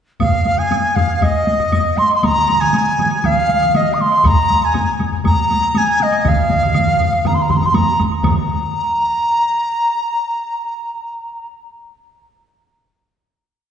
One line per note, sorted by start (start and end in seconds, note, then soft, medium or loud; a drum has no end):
0.20 0.60 F5 medium
0.20 taiko medium
0.20 taiko low-mid medium
0.20 taiko high medium
0.20 high woodblock medium
0.32 taiko low-mid medium
0.45 taiko low-mid medium
0.45 taiko high soft
0.45 high woodblock soft
0.58 0.97 G#5 medium
0.58 taiko low-mid medium
0.58 taiko high soft
0.58 high woodblock soft
0.71 taiko high medium
0.71 high woodblock medium
0.84 taiko high soft
0.95 1.24 F5 medium
0.95 taiko low-mid medium
0.95 taiko high soft
0.95 high woodblock soft
1.09 taiko high soft
1.09 high woodblock soft
1.21 1.99 D#5 medium
1.21 taiko medium
1.21 taiko low-mid medium
1.21 taiko high medium
1.21 high woodblock medium
1.34 taiko high soft
1.47 taiko high medium
1.47 high woodblock soft
1.59 taiko low-mid medium
1.59 taiko high soft
1.59 high woodblock soft
1.72 taiko low-mid medium
1.72 taiko high medium
1.72 high woodblock medium
1.85 taiko high soft
1.97 2.15 C6 medium
1.97 taiko high medium
1.97 high woodblock soft
2.10 taiko high soft
2.10 high woodblock soft
2.15 2.26 C6 medium
2.23 2.62 A#5 medium
2.23 taiko medium
2.23 taiko mid medium
2.23 taiko high medium
2.23 high woodblock medium
2.36 taiko mid medium
2.48 taiko mid medium
2.48 taiko high medium
2.48 high woodblock soft
2.60 3.27 G#5 medium
2.60 taiko mid medium
2.60 taiko high soft
2.60 high woodblock soft
2.74 taiko high medium
2.74 high woodblock medium
2.87 taiko high soft
2.99 taiko mid medium
2.99 taiko high medium
2.99 high woodblock soft
3.11 taiko high soft
3.11 high woodblock soft
3.24 3.78 F5 medium
3.24 taiko medium
3.24 taiko mid medium
3.24 taiko high medium
3.24 high woodblock medium
3.37 taiko high soft
3.49 taiko high soft
3.49 high woodblock soft
3.61 taiko mid medium
3.61 taiko high soft
3.61 high woodblock soft
3.74 3.95 D#5 medium
3.74 taiko mid medium
3.74 taiko high medium
3.74 high woodblock medium
3.87 taiko high soft
3.93 4.02 D#6 medium
3.99 4.28 C6 medium
3.99 taiko high medium
3.99 high woodblock soft
4.12 taiko high soft
4.12 high woodblock soft
4.23 4.66 A#5 medium
4.23 taiko medium
4.23 taiko low-mid loud
4.23 taiko high medium
4.23 high woodblock medium
4.50 taiko high medium
4.50 high woodblock soft
4.62 5.00 G#5 medium
4.62 taiko high soft
4.62 high woodblock soft
4.74 taiko low-mid medium
4.74 taiko high medium
4.74 high woodblock soft
4.88 taiko high soft
4.99 taiko low-mid medium
4.99 taiko high medium
4.99 high woodblock soft
5.12 taiko low-mid medium
5.12 high woodblock soft
5.24 5.79 A#5 medium
5.24 taiko medium
5.24 taiko low-mid medium
5.24 taiko high medium
5.24 high woodblock soft
5.50 taiko high medium
5.50 high woodblock soft
5.62 taiko high soft
5.62 high woodblock soft
5.74 6.04 G#5 medium
5.74 taiko high medium
5.74 high woodblock medium
5.87 taiko high soft
6.00 6.29 D#5 medium
6.00 taiko high medium
6.00 high woodblock soft
6.12 taiko high soft
6.12 high woodblock soft
6.25 7.28 F5 medium
6.25 taiko medium
6.25 taiko low-mid medium
6.25 taiko mid medium
6.25 taiko high medium
6.25 high woodblock medium
6.37 taiko low-mid medium
6.37 taiko mid medium
6.50 taiko low-mid medium
6.50 taiko mid medium
6.50 taiko high medium
6.50 high woodblock soft
6.62 taiko low-mid medium
6.62 taiko mid medium
6.62 taiko high soft
6.62 high woodblock soft
6.74 taiko low-mid medium
6.74 taiko mid medium
6.74 taiko high medium
6.74 high woodblock medium
6.87 taiko low-mid medium
6.87 taiko mid medium
6.87 taiko high soft
6.99 taiko low-mid medium
6.99 taiko mid medium
6.99 high woodblock soft
7.12 taiko high soft
7.12 high woodblock soft
7.24 7.36 A#5 medium
7.24 taiko low-mid medium
7.24 taiko mid medium
7.24 taiko high medium
7.24 high woodblock soft
7.34 7.43 C6 medium
7.34 taiko high soft
7.42 7.51 A#5 medium
7.49 7.59 C6 medium
7.49 taiko low-mid medium
7.49 taiko mid medium
7.49 taiko high medium
7.49 high woodblock soft
7.57 7.67 A#5 medium
7.62 7.76 C6 medium
7.62 taiko low-mid medium
7.62 taiko mid medium
7.62 taiko high soft
7.62 high woodblock soft
7.74 8.01 A#5 medium
7.74 taiko low-mid medium
7.74 taiko mid medium
7.74 taiko high medium
7.74 high woodblock medium
7.87 taiko high soft
7.99 taiko medium
7.99 taiko high medium
7.99 high woodblock soft
8.11 taiko high soft
8.11 high woodblock soft
8.23 11.47 A#5 medium
8.23 taiko medium
8.23 taiko low-mid medium
8.23 taiko mid medium
8.23 taiko high medium
8.23 high woodblock medium